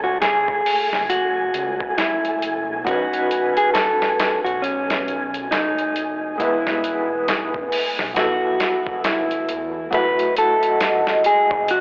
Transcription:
Already playing: C#2 A3 C#4 F#4 C#5 G#5
0.04 F#4
0.22 G#4, snare, closed hi-hat
0.48 kick
0.66 open hi-hat
0.92 F#1, snare
1.10 F#4, closed hi-hat
1.54 C#2, closed hi-hat
1.80 kick
1.98 F#1 E4, snare, closed hi-hat
2.25 closed hi-hat
2.42 closed hi-hat
2.68 B1
2.84 B1 F#3 C#4 D#4 F#4, kick, closed hi-hat
2.89 B4
3.13 closed hi-hat
3.31 closed hi-hat
3.57 G#4, closed hi-hat
3.74 A4, snare, closed hi-hat
4.02 snare
4.20 snare, closed hi-hat
4.45 B1 F#4, closed hi-hat
4.62 C#4, closed hi-hat
4.90 snare, closed hi-hat
5.07 B1, closed hi-hat
5.34 closed hi-hat
5.51 F#1 D#4, snare, closed hi-hat
5.78 closed hi-hat
5.96 E1, closed hi-hat
6.38 G#3 B3 E4, kick, closed hi-hat
6.43 B4
6.67 snare
6.84 closed hi-hat
7.28 snare, closed hi-hat
7.54 kick
7.72 open hi-hat
7.99 B1, snare
8.14 F#3 B3 E4 F#4, snare, closed hi-hat
8.19 A4
8.60 snare, closed hi-hat
8.87 F#1, kick
9.04 E4, snare, closed hi-hat
9.31 closed hi-hat
9.48 E2, closed hi-hat
9.91 F#1 F#3 A3 E4 B4 D#5, kick, closed hi-hat
9.95 F#4
10.19 closed hi-hat
10.36 A4, closed hi-hat
10.63 closed hi-hat
10.81 snare, closed hi-hat
11.07 snare
11.24 G#4, closed hi-hat
11.51 F#1, kick
11.68 F#4, closed hi-hat

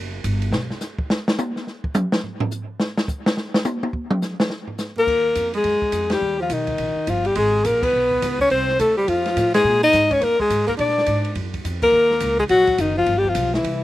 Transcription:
Already playing: F#1
0.24 G1, kick, hi-hat pedal, ride
0.42 ride
0.51 B1, snare
0.70 snare
0.81 snare, hi-hat pedal
0.99 kick
1.10 snare
1.28 snare
1.38 hi-hat pedal, high tom
1.56 snare
1.67 snare
1.84 kick
1.94 hi-hat pedal, mid tom
2.12 snare
2.24 floor tom
2.40 floor tom
2.51 hi-hat pedal
2.80 snare
2.97 snare
3.08 kick, hi-hat pedal
3.26 snare
3.37 snare
3.54 snare
3.65 hi-hat pedal, high tom
3.83 high tom
3.93 kick
4.11 mid tom
4.22 snare, hi-hat pedal
4.40 snare
4.50 snare
4.67 floor tom
4.78 snare, hi-hat pedal
4.96 A#3 A#4, floor tom
5.07 D#2, kick, crash
5.35 F2, kick, hi-hat pedal, ride
5.54 G#3 G#4, ride
5.64 F#2, kick, ride
5.82 muted upright bass stroke, kick
5.92 F2, kick, hi-hat pedal, ride
6.10 G3 G4, snare, ride
6.21 D#2
6.39 F3 F4
6.50 B1 D#3 D#4, kick, hi-hat pedal, ride
6.67 kick, ride
6.78 A#1, kick, ride
6.96 muted upright bass stroke
7.07 G1 F3 F4, kick, hi-hat pedal, ride
7.25 G3 G4, ride
7.35 G#1 G#3 G#4, kick, ride
7.64 A#1 A#3 A#4, kick, hi-hat pedal, ride
7.82 B3 B4, kick, crash
7.93 B1
8.11 kick
8.22 C#2, kick, snare, hi-hat pedal, ride
8.40 C#4 C#5, kick
8.50 C2 C4 C5, kick, ride
8.69 snare
8.79 D2 A3 A4, kick, hi-hat pedal, ride
8.97 G3 G4
9.08 F2 F3 F4, kick, ride
9.26 snare, ride
9.37 A2, kick, snare, hi-hat pedal, ride
9.54 G#3 G#4, snare, ride
9.64 A#2
9.83 D#4 D#5
9.93 G#2, kick, snare, hi-hat pedal, ride
10.11 C#4 C#5, kick, ride
10.21 F2 A#3 A#4, kick, ride
10.39 G#3 G#4, muted upright bass stroke, kick
10.50 G#2, kick, hi-hat pedal, ride
10.67 A#3 A#4, kick, ride
10.77 A#2 D4 D5, kick, ride
10.88 snare
10.98 snare
11.06 G#2, kick, hi-hat pedal, ride
11.25 ride
11.35 F#2, kick, ride
11.54 kick, ride
11.65 F2, kick, hi-hat pedal, ride
11.82 A#3 A#4, kick, crash
11.92 D#2
12.11 snare
12.20 C#2, kick, hi-hat pedal, ride
12.39 G#3 G#4, kick
12.49 A#1 F#3 F#4, kick, ride
12.67 kick, ride
12.78 F#1 D#3 D#4, kick, hi-hat pedal, ride
12.96 F3 F4
13.06 G1, kick, ride
13.17 G3 G4
13.25 F3, kick
13.29 F4
13.35 B1, kick, hi-hat pedal, ride
13.54 E3 E4, snare
13.64 C2, kick, ride

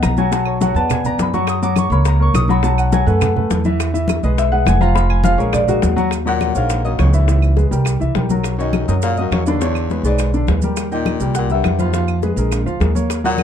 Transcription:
Already playing: B3 B4 D#5 E5 F#5 G#5
0.02 B1 A#5, high bongo, low bongo, high conga, claves, maracas
0.17 F#3 F#4 F#5 G#5, high bongo, high conga, maracas
0.32 F#3 F#4 F#5 A5, high bongo, maracas
0.45 C#5, high conga, claves
0.61 F#3 F#4 F#5, high bongo, high conga, maracas
0.74 E2 B3 B4 D5 A5, high bongo, high conga, maracas
0.90 G#5, high bongo, high conga, low conga, claves, maracas
1.04 B3 B4 D5 A#5, high bongo, high conga, low conga, maracas
1.18 F#2 B5, high bongo, low bongo, high conga, maracas
1.33 F#3 F#4 F#5 C#6, high bongo, high conga, maracas
1.47 D#6, high bongo, high conga, claves, maracas
1.62 F#3 F#4 F#5 D6, high bongo, high conga, maracas
1.76 C#6, high bongo, high conga, claves, maracas
1.90 C#2 A#3 A#4 C#5 B5, high bongo, high conga, maracas
2.05 A#5, high bongo, high conga, maracas
2.20 A#3 A#4 C#5 C#6, high conga
2.34 B1 D#6, high bongo, low bongo, high conga, claves, maracas
2.48 F#3 F#4 F#5 B5, high bongo, high conga, maracas
2.63 F#3 F#4 F#5 A5, high bongo, maracas
2.78 F#5, high conga, claves, maracas
2.92 F#3 F#4 F#5 G#5, high bongo, high conga, maracas
3.06 F#2 A3 A4 B4 F#5, high bongo, high conga, maracas
3.21 high bongo, high conga, low conga, claves, maracas
3.36 A3 A4 B4, high bongo, high conga, low conga
3.50 E2, high bongo, low bongo, high conga, maracas
3.65 E3 E4 E5, high bongo, high conga, maracas
3.80 high bongo, claves, maracas
3.94 E3 E4 E5, high bongo, high conga, maracas
4.08 high bongo, high conga, claves, maracas
4.22 B1 G#3 G#4 B4 D#5, high bongo, high conga, maracas
4.37 E5, high bongo, high conga, maracas
4.52 G#3 G#4 B4 F#5, high conga
4.66 F1 G#5, high bongo, low bongo, high conga, claves, maracas
4.81 F3 F4 F5 A#5, high bongo, high conga, maracas
4.95 F3 F4 F5 B5, high bongo, maracas
5.10 G#5, high conga, claves
5.24 F3 F4 F5, high bongo, high conga, maracas
5.38 A#1 G#3 G#4 A#4 C#5, high bongo, maracas
5.53 D5, high bongo, high conga, low conga, claves, maracas
5.68 G#3 F#4 G#4 A#4, high bongo, high conga, low conga, maracas
5.82 D#2, high bongo, low bongo, high conga, maracas
5.96 F#3 F#4 F#5, high bongo, high conga, maracas
6.11 high bongo, high conga, claves, maracas
6.25 A#2 F#3 F#4 F#5, high conga, maracas
6.41 high bongo, high conga, claves, maracas
6.54 A#1 G#2 A#3 A#4 C#5 F5, high conga, maracas
6.70 high bongo, high conga, maracas
6.84 F#2 A#3 A#4 C#5 D#5, high conga, maracas
6.99 C#2 F2 C#5, high bongo, low bongo, high conga, claves, maracas
7.13 D#2 E3 E4 B4 E5, maracas
7.28 E3 E4 E5, high bongo, maracas
7.42 high conga, claves, maracas
7.56 G#3 G#4 B4, high bongo, high conga, maracas
7.71 C2 G3 G4 A#4, high bongo, high conga, maracas
7.85 high bongo, high conga, claves, maracas
8.00 C2 E3 E4 E5, high bongo, high conga, maracas
8.15 B1 G3 G4 A#4, high bongo, low bongo, high conga, maracas
8.29 F#3 F#4 A#4, high bongo, high conga, maracas
8.44 high bongo, claves, maracas
8.58 F#2 D#3 D#4 C#5 D#5, maracas
8.73 high bongo, high conga, claves, maracas
8.88 F#2 F#3 F#4 A#4 D#5, high conga, maracas
9.02 A#2 F5, high bongo, high conga, maracas
9.17 F#2 F#3 F#4 A#4 D#5, high conga, maracas
9.31 E2 F#2 C#5, high bongo, low bongo, high conga, claves, maracas
9.46 D#2 D3 D4 B4 D5, maracas
9.59 E2 D3 D4 C#5 D5, high bongo, maracas
9.75 high conga, claves, maracas
9.90 G#3 G#4 B4, high bongo, high conga, maracas
10.03 B1 G#2 G#3 G#4 B4 D5, high bongo, high conga, maracas
10.19 high bongo, high conga, claves, maracas
10.33 D3 D4 D5, high bongo, high conga, maracas
10.47 D#2 G#3 G#4 B4, high bongo, low bongo, high conga, maracas
10.62 G3 G4 A#4, high bongo, high conga, maracas
10.76 high bongo, high conga, claves, maracas
10.91 A#2 D#3 D#4 D#5 G5, high conga, maracas
11.06 high bongo, high conga, claves, maracas
11.20 C2 G3 G4 A#4, high conga, maracas
11.35 A#2 F#5, high bongo, high conga, maracas
11.49 G2 G3 G4 A#4 E5, high conga, maracas
11.64 F2, high bongo, low bongo, high conga, claves, maracas
11.79 D#2 F3 F4 B4 F5, high conga, maracas
11.93 F3 F4 F5, high bongo, high conga, maracas
12.08 high conga, claves, maracas
12.22 G#3 G#4 B4, high bongo, high conga, maracas
12.36 A#1 G#3 G#4 A#4, high bongo, high conga, maracas
12.51 high bongo, high conga, claves, maracas
12.66 D2 F3 F4 F5, high bongo, high conga, maracas
12.80 D#2 G#3 G#4 A#4, high bongo, low bongo, high conga, maracas
12.95 A#3 A#4 C#5, high bongo, high conga, maracas
13.10 high bongo, claves, maracas
13.24 A#2 F#3 F#4 F#5, high conga, maracas
13.38 high bongo, high conga, claves, maracas

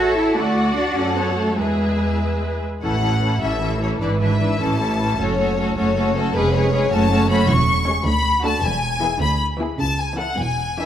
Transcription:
Already playing: A1 F#4 A4 C#5
0.00 A4 E5
0.17 E4
0.36 D2 A3 F#4 D5 F#5
0.76 D4
0.96 F#2 C#4 A4
1.17 B3 C#5
1.38 A3
1.58 E2 G#3 G#4 B4 E5
2.83 A1 A2 E3 C#4 E4 A4 F#5
3.02 E3 C#4 E4 A4
3.22 E3 C#4 E4 A4
3.42 A1 A2 E3 C#4 E4 A4 E5
3.61 E3 C#4 E4 A4
3.81 E3 C#4 E4 A4 C#5
4.01 G#1 G#2 E3 D4 E4 B4 D5
4.21 E3 D4 E4 B4 E5
4.41 E3 D4 E4 B4
4.61 A1 A2 E3 C#4 E4 A4 A5
4.80 E3 C#4 E4 A4
5.00 E3 C#4 E4 A4
5.19 F#1 F#2 A3 C#4 F#4 A4 C#5
5.39 A3 C#4 F#4 A4
5.58 A3 C#4 F#4 A4
5.76 F#1 F#2 A3 C#4 F#4 A4 C#5
5.96 A3 C#4 F#4 A4
6.16 A3 C#4 F#4 A4
6.34 F1 F2 G#3 C#4 G#4 B4
6.53 G#3 C#4 G#4 B4 C#5
6.73 G#3 C#4 G#4 B4
6.92 F#1 F#2 A3 C#4 F#4 C#5 A5
7.11 A3 C#4 F#4 C#5
7.30 A3 C#4 F#4 C#5 B5
7.49 E1 E2 C#6
7.87 G#3 C#4 G#4 C#5
8.06 D2 B5
8.44 A3 D4 F#4 A4 A5
8.63 E1 E2 G#5
9.01 E3 B3 E4 G#4
9.20 D2 D3 B5
9.59 E3 B3 E4 G#4
9.78 C#2 C#3 A5
9.99 G#5
10.17 E3 C#4 E4 A4 F#5
10.38 E1 E2 G#5
10.79 E3 D4 E4 B4 E5

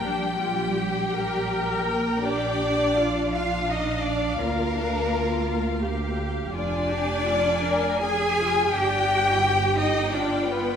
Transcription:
Already playing: G5
0.03 A#1 G3 D4 G4
0.40 F4
0.78 G4
1.14 A#4
1.88 A#3 A#4
2.24 D4 G4 D5
2.98 F4 F5
3.34 D4 F4 F5
3.71 D#4 D#5
4.06 D4 D5
4.41 D2 A#3 F4 A#4
4.77 D4
5.12 F4
5.83 G4
6.53 F1 D4 F4 D5 G#5
6.91 G4
7.26 F4
7.64 A#4
8.02 G#4 G#5
8.40 F4
8.73 G1 D4 G4 G5
9.44 G4
9.78 D#4 D#5
10.13 D4 F4 D5
10.48 B3 B4

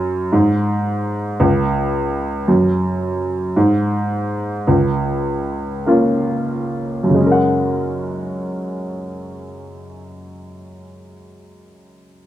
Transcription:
Already playing: F#2
0.32 G#2
1.40 C#2
2.48 F#2
3.56 G#2
4.67 C#2
5.86 A#3 C#4 F4
7.03 F#2
7.09 C#3
7.14 G#3
7.20 C#4
7.26 A#4
7.31 F#5

